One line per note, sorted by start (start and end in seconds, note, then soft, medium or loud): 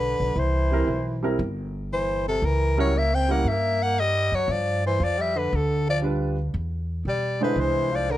0.00 0.16 B1 medium
0.00 0.38 D3 medium
0.00 0.41 B4 medium
0.20 0.35 B1 medium
0.36 0.84 C2 medium
0.36 1.23 E3 medium
0.36 1.25 C5 medium
0.71 0.86 G3 medium
0.71 0.86 C4 medium
0.71 0.87 E4 medium
0.71 0.87 A#4 medium
0.88 1.36 B1 medium
1.23 1.37 G3 medium
1.23 1.38 C4 medium
1.23 1.38 E4 medium
1.23 1.38 A#4 medium
1.39 2.38 G1 medium
1.92 2.25 E3 medium
1.92 2.25 C5 medium
2.28 2.46 C3 medium
2.28 2.47 A4 medium
2.42 3.41 C#2 medium
2.42 2.78 E3 medium
2.42 2.79 A#4 medium
2.77 2.97 F#3 medium
2.77 2.92 G3 medium
2.77 2.92 C#4 medium
2.77 2.92 E4 medium
2.77 2.93 A#4 medium
2.77 2.99 C#5 medium
2.96 3.15 A#3 medium
2.96 3.16 E5 medium
3.14 3.32 C4 medium
3.14 3.33 G5 medium
3.28 3.43 G3 medium
3.28 3.48 A#3 medium
3.28 3.44 C#4 medium
3.28 3.44 E4 medium
3.28 3.44 A#4 medium
3.28 3.50 F#5 medium
3.44 4.28 G2 medium
3.44 3.83 A#3 medium
3.44 3.84 E5 medium
3.83 4.02 A#3 medium
3.83 4.01 F#5 loud
3.99 4.35 G3 medium
3.99 4.36 D#5 medium
4.32 4.47 F#2 medium
4.32 4.51 F#3 medium
4.32 4.54 C#5 medium
4.48 4.96 G2 medium
4.48 4.85 F3 medium
4.52 4.86 D5 medium
4.86 5.02 E3 medium
4.86 5.06 C5 medium
5.00 5.48 F2 medium
5.00 5.20 F3 medium
5.04 5.23 D5 medium
5.18 5.38 G3 medium
5.18 5.39 E5 medium
5.36 5.53 D3 medium
5.36 5.57 B4 medium
5.53 6.51 D2 medium
5.53 5.88 D3 medium
5.53 5.89 A4 medium
5.89 6.03 F3 medium
5.89 5.99 D5 medium
6.02 6.35 G3 medium
6.02 6.35 D4 medium
6.02 6.35 F4 medium
6.02 6.36 B4 medium
6.54 7.02 E2 medium
7.05 7.53 B2 medium
7.05 7.40 G3 medium
7.05 7.41 D5 medium
7.41 7.59 D3 medium
7.41 8.05 G#3 medium
7.41 8.06 D4 medium
7.41 8.06 E4 medium
7.41 7.61 B4 medium
7.41 8.06 C5 medium
7.56 8.18 C2 medium
7.56 7.93 E3 medium
7.60 7.97 C5 medium
7.92 8.11 F3 medium
7.92 8.13 D5 medium
8.10 8.18 D3 medium
8.10 8.18 A#4 medium